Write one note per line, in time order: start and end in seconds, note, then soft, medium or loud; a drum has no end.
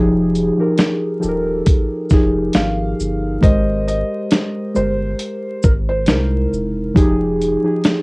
0.00 0.50 F1 loud
0.00 0.45 F3 loud
0.00 0.45 D#4 medium
0.00 0.45 G4 loud
0.00 0.46 G#4 loud
0.35 closed hi-hat soft
0.35 shaker soft
0.58 1.11 F3 medium
0.58 1.11 D#4 medium
0.58 1.12 G4 medium
0.58 1.12 A#4 medium
0.78 snare loud
0.78 closed hi-hat medium
1.20 1.61 D#1 loud
1.20 1.94 F3 medium
1.20 1.95 D#4 medium
1.20 1.95 G4 medium
1.20 1.29 A4 medium
1.20 shaker soft
1.28 1.99 A#4 medium
1.66 kick medium
1.66 closed hi-hat medium
2.10 2.49 F1 medium
2.10 3.20 F3 medium
2.10 3.20 D#4 medium
2.10 3.21 G4 medium
2.10 3.21 G#4 loud
2.10 kick medium
2.10 snare soft
2.10 shaker medium
2.53 2.93 G#1 medium
2.53 3.46 F5 loud
2.53 snare loud
2.53 closed hi-hat medium
3.00 3.38 G1 medium
3.00 shaker medium
3.41 4.03 G#1 loud
3.41 4.51 G#3 medium
3.41 4.52 G4 medium
3.41 4.52 A#4 medium
3.41 4.53 C5 loud
3.41 3.86 D#5 loud
3.41 kick loud
3.41 closed hi-hat medium
3.88 4.78 D#5 loud
3.88 closed hi-hat soft
3.88 shaker soft
4.31 snare loud
4.31 closed hi-hat medium
4.74 5.14 G1 medium
4.74 6.07 G#3 medium
4.74 6.07 G4 medium
4.74 6.08 A#4 medium
4.74 5.66 C5 loud
4.74 6.08 C5 medium
4.74 shaker soft
5.19 closed hi-hat medium
5.63 6.10 G#1 medium
5.63 5.70 A#4 medium
5.63 kick medium
5.63 shaker medium
5.89 6.48 C5 medium
6.06 6.46 C2 medium
6.06 6.81 C3 medium
6.06 6.81 G#3 medium
6.06 6.81 D#4 medium
6.06 6.82 E4 medium
6.06 6.82 A#4 medium
6.06 snare loud
6.06 closed hi-hat medium
6.53 6.90 E1 medium
6.53 shaker medium
6.94 7.56 F1 loud
6.94 7.50 F3 loud
6.94 7.50 D#4 loud
6.94 7.51 G4 loud
6.94 7.51 G#4 loud
6.94 kick loud
6.94 closed hi-hat medium
7.42 closed hi-hat soft
7.42 shaker soft
7.63 8.02 F3 medium
7.63 8.02 D#4 medium
7.63 8.02 G4 medium
7.63 8.02 G#4 medium
7.84 snare loud
7.84 closed hi-hat medium